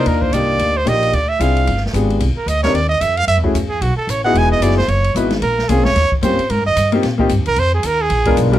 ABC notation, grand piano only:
X:1
M:4/4
L:1/8
Q:"Swing" 1/4=224
K:Eb
V:1 name="Grand piano"
[B,DEFB]2 [B,DEFG]3 z [B,DEFG]2 | z2 [CD_F=FA]2 z2 [=B,DFGA]2 | z3 [CDEGB] z4 | z [=A,_D_F_G_A] z4 z [=B,^DF^FA]- |
[=B,^D_F^FA]2 [B,D=EF^G] z3 [B,DEF=B] z | z2 [B,C_DFA] z3 [B,CDFG] z | z3 [B,CEFG] z [B,CEFG] z2 | z4 z [A,_CDFB]2 [G,=CDFB] |]